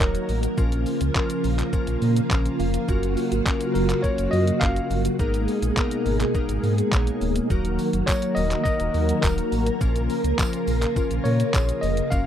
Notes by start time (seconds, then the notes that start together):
Already playing: D#3 F#3 A#3 F#4 A#4
0.00 D#1 F#3 A#3 D#4 F#4 A#4 C#5, kick, clap, shaker
0.15 closed hi-hat, shaker
0.29 A1, open hi-hat, shaker
0.43 closed hi-hat, shaker
0.58 A#1 C#3 F3 A#3 C#4 F4 A#4, kick, shaker
0.72 closed hi-hat, shaker
0.86 open hi-hat, shaker
1.01 C#2, closed hi-hat, shaker
1.15 F3 A#3 C#4 F4 A#4, kick, clap, shaker
1.30 closed hi-hat, shaker
1.44 A#1, open hi-hat, shaker
1.59 clap, closed hi-hat, shaker
1.73 F3 A#3 C#4 F4 A#4, kick, shaker
1.87 A#1, closed hi-hat, shaker
2.02 A#2, open hi-hat, shaker
2.16 closed hi-hat, shaker
2.31 A#1 F3 A#3 C#4 F4 A#4 A#5, kick, clap, shaker
2.46 closed hi-hat, shaker
2.60 F1 F5, open hi-hat, shaker
2.74 closed hi-hat, shaker
2.88 F#1 C#3 F#3 A#3 C#4 F4 F#4 A#4, kick, shaker
3.03 closed hi-hat, shaker
3.17 open hi-hat, shaker
3.32 G#1, closed hi-hat, shaker
3.46 A#3 C#4 F4 F#4 A#4, kick, clap, shaker
3.61 closed hi-hat, shaker
3.74 F#1 A#4, open hi-hat, shaker
3.90 clap, closed hi-hat, shaker
4.03 A#3 C#4 F4 F#4 A#4 C#5, kick, shaker
4.18 F#1, closed hi-hat, shaker
4.31 F#2 D#5, open hi-hat, shaker
4.47 closed hi-hat, shaker
4.60 F#1 A#3 C#4 F4 F#4 A#4 F5, kick, clap, shaker
4.76 closed hi-hat, shaker
4.90 G1, open hi-hat, shaker
5.05 closed hi-hat, shaker
5.19 G#1 B2 G#3 A#3 B3 D#4 G#4 A#4, kick, shaker
5.34 closed hi-hat, shaker
5.48 open hi-hat, shaker
5.62 A#1, closed hi-hat, shaker
5.77 A#3 B3 D#4 G#4 A#4, kick, clap, shaker
5.91 closed hi-hat, shaker
6.06 G#1, open hi-hat, shaker
6.20 clap, closed hi-hat, shaker
6.35 A#3 B3 D#4 G#4 A#4, kick, shaker
6.49 G#1, closed hi-hat, shaker
6.63 G#2, open hi-hat, shaker
6.78 closed hi-hat, shaker
6.92 A#1 A#3 B3 D#4 G#4 C#5, kick, clap, shaker
7.07 closed hi-hat, shaker
7.21 D1, open hi-hat, shaker
7.36 closed hi-hat, shaker
7.50 D#1 D#3 F#3 A#3 D#4 F#4 A#4, kick, tambourine, shaker
7.65 closed hi-hat, shaker
7.79 open hi-hat, tambourine, shaker
7.93 F#1, closed hi-hat, shaker
8.06 F#3 A#3 D#4 F#4 A#4 C#5, kick, clap, tambourine, shaker
8.22 closed hi-hat, shaker
8.35 D#1 D#5, open hi-hat, tambourine, shaker
8.51 clap, closed hi-hat, shaker
8.64 F#3 A#3 D#4 F#4 A#4 D#5, kick, tambourine, shaker
8.80 D#1, closed hi-hat, shaker
8.94 D#2, open hi-hat, shaker
9.09 closed hi-hat, shaker
9.21 D#1 F#3 A#3 D#4 F#4 A#4, kick, clap, tambourine, shaker
9.38 closed hi-hat, shaker
9.52 A1, open hi-hat, tambourine, shaker
9.67 closed hi-hat, shaker
9.81 A#1 C#3 F3 A#3 C#4 F4 A#4, kick, tambourine, shaker
9.96 closed hi-hat, shaker
10.10 open hi-hat, tambourine, shaker
10.24 C#2, closed hi-hat, shaker
10.38 F3 A#3 C#4 F4 A#4, kick, clap, tambourine, shaker
10.53 closed hi-hat, shaker
10.67 A#1, open hi-hat, tambourine, shaker
10.82 clap, closed hi-hat, shaker
10.96 F3 A#3 C#4 F4 A#4, kick, tambourine, shaker
11.11 A#1, closed hi-hat, shaker
11.24 A#2 C#5, open hi-hat, shaker
11.40 closed hi-hat, shaker
11.54 A#1 F3 A#3 C#4 F4 G#4, kick, clap, tambourine, shaker
11.69 closed hi-hat, shaker
11.81 F1 D#5, open hi-hat, tambourine, shaker
11.97 closed hi-hat, shaker
12.10 F#1 F#3 A#3 C#4 F4 F#4 A#4 F5, kick, tambourine, shaker